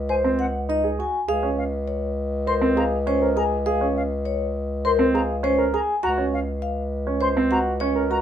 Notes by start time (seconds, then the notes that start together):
Already playing: C#2
0.09 C5 G#5
0.24 C4
0.39 F#5
0.69 D#4 D#5
0.84 G#4
0.99 F#4 G#5
1.27 C#2 G#4 F5
1.43 C#4
1.57 F5
1.88 C#5
2.47 A#4 C5 C6
2.61 C4
2.76 G#4 F5 A#5
3.07 C#4 C5
3.22 A#4
3.36 G#4 G#5 A#5
3.66 G#4 F5
3.81 C#4
3.96 F5
4.25 C#5
4.84 A#4 C5 C6
4.99 C4
5.14 G#4 F5 A#5
5.43 C#4 C5
5.58 A#4
5.73 G#4 G#5 A#5
6.03 C#2 F#4 F#5 A#5
6.18 C#4
6.33 F5
6.62 F5
7.07 C#4
7.21 C5 C6
7.37 C4
7.51 F#4 F#5 A#5
7.80 C#4 C#5
7.95 A#4
8.10 F#4 A#5